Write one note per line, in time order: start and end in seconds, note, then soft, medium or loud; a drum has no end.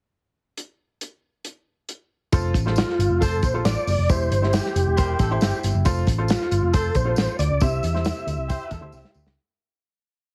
0.57 closed hi-hat medium
1.01 closed hi-hat medium
1.45 closed hi-hat medium
1.89 closed hi-hat medium
2.32 2.51 F1 loud
2.32 2.54 F4 medium
2.32 2.54 A4 medium
2.32 2.54 C5 medium
2.32 kick loud
2.32 closed hi-hat medium
2.32 tambourine medium
2.54 2.82 A1 medium
2.54 kick medium
2.54 closed hi-hat medium
2.54 tambourine soft
2.66 3.22 F4 medium
2.66 3.22 A4 medium
2.66 3.22 C5 medium
2.66 snare soft
2.76 3.23 F4 medium
2.76 snare loud
2.76 closed hi-hat medium
2.76 tambourine medium
2.89 snare soft
2.99 3.08 G1 medium
2.99 closed hi-hat medium
2.99 tambourine soft
3.10 3.43 F1 medium
3.20 3.52 F4 medium
3.20 3.52 A4 medium
3.20 3.44 A4 medium
3.20 3.52 C5 medium
3.20 kick medium
3.20 closed hi-hat medium
3.20 tambourine medium
3.43 3.61 A#1 medium
3.43 3.54 C5 medium
3.43 kick medium
3.43 closed hi-hat medium
3.43 tambourine medium
3.54 3.89 F4 medium
3.54 3.89 A4 medium
3.54 3.89 C5 medium
3.65 3.74 A1 medium
3.65 4.10 D5 medium
3.65 snare medium
3.65 closed hi-hat medium
3.65 tambourine medium
3.87 3.96 F#1 medium
3.87 open hi-hat medium
3.87 tambourine soft
3.98 4.07 F1 medium
4.09 4.27 E1 loud
4.09 4.71 E3 medium
4.09 4.30 E4 medium
4.09 4.30 G4 medium
4.09 4.31 C5 medium
4.09 4.55 C5 loud
4.09 kick loud
4.09 closed hi-hat medium
4.09 tambourine medium
4.31 4.58 G1 medium
4.31 closed hi-hat medium
4.31 tambourine soft
4.42 4.98 E4 medium
4.42 4.99 G4 medium
4.42 4.99 C5 medium
4.42 snare soft
4.53 5.59 G4 medium
4.53 snare loud
4.53 closed hi-hat medium
4.53 tambourine medium
4.66 snare soft
4.75 4.84 F1 medium
4.75 closed hi-hat medium
4.75 tambourine medium
4.87 5.13 E1 medium
4.97 5.28 E4 medium
4.97 5.29 G4 medium
4.97 5.19 G4 medium
4.97 5.18 A#4 medium
4.97 5.29 C5 medium
4.97 kick medium
4.97 closed hi-hat medium
4.97 tambourine medium
5.19 5.37 A1 medium
5.19 5.41 A4 medium
5.19 kick medium
5.19 snare soft
5.19 closed hi-hat medium
5.19 tambourine medium
5.31 5.66 E4 medium
5.31 5.66 G4 medium
5.31 5.66 C5 loud
5.41 5.51 G1 medium
5.41 5.84 E4 medium
5.41 5.83 G4 medium
5.41 snare loud
5.41 closed hi-hat medium
5.41 tambourine medium
5.63 5.73 G1 medium
5.63 closed hi-hat medium
5.63 tambourine medium
5.75 5.84 F#1 loud
5.85 6.04 F1 loud
5.85 6.06 F4 medium
5.85 6.06 A4 medium
5.85 6.07 C5 medium
5.85 kick loud
5.85 closed hi-hat medium
5.85 tambourine loud
6.07 6.34 A1 medium
6.07 kick medium
6.07 closed hi-hat medium
6.07 tambourine soft
6.18 6.75 F4 medium
6.18 6.75 A4 medium
6.18 6.75 C5 medium
6.28 6.75 F4 medium
6.28 snare loud
6.28 closed hi-hat medium
6.28 tambourine medium
6.42 snare soft
6.51 6.60 G1 medium
6.51 closed hi-hat medium
6.51 tambourine soft
6.63 6.89 F1 medium
6.73 7.05 F4 medium
6.73 6.96 A4 medium
6.73 7.05 A4 medium
6.73 7.05 C5 medium
6.73 kick medium
6.73 closed hi-hat loud
6.73 tambourine medium
6.95 7.13 A#1 medium
6.95 7.37 C5 loud
6.95 kick medium
6.95 closed hi-hat medium
6.95 tambourine medium
7.05 7.41 F4 medium
7.05 7.41 A4 medium
7.05 7.41 C5 medium
7.16 7.26 A1 medium
7.16 snare medium
7.16 closed hi-hat medium
7.16 tambourine medium
7.39 7.48 D2 medium
7.39 7.62 D5 medium
7.39 closed hi-hat medium
7.39 tambourine medium
7.50 7.59 C#2 medium
7.60 7.79 C2 loud
7.60 8.24 C3 medium
7.60 7.82 E4 medium
7.60 7.82 G4 medium
7.60 7.83 C5 medium
7.60 9.11 E5 loud
7.60 kick loud
7.60 closed hi-hat medium
7.60 tambourine loud
7.83 8.10 E2 medium
7.83 closed hi-hat medium
7.83 tambourine soft
7.94 8.50 E4 medium
7.94 8.50 G4 medium
7.94 8.50 C5 medium
7.94 snare soft
8.05 snare loud
8.05 closed hi-hat medium
8.05 tambourine medium
8.27 8.36 D2 loud
8.27 closed hi-hat medium
8.27 tambourine medium
8.38 8.56 C2 medium
8.49 8.80 E4 medium
8.49 8.71 E4 medium
8.49 8.80 G4 medium
8.49 8.70 G4 medium
8.49 8.81 C5 loud
8.49 kick loud
8.49 closed hi-hat medium
8.49 tambourine medium
8.71 8.80 E2 medium
8.71 8.92 A4 medium
8.71 kick medium
8.71 snare soft
8.71 closed hi-hat medium
8.71 tambourine medium
8.81 8.91 D2 medium
8.81 9.17 E4 medium
8.81 9.17 G4 medium
8.81 9.17 C5 medium
8.92 9.02 C2 medium
8.92 9.35 E4 medium
8.92 9.35 G4 medium
8.92 tambourine medium
9.05 snare soft
9.14 9.24 D2 medium
9.14 tambourine medium
9.26 9.35 C#2 medium
9.26 snare medium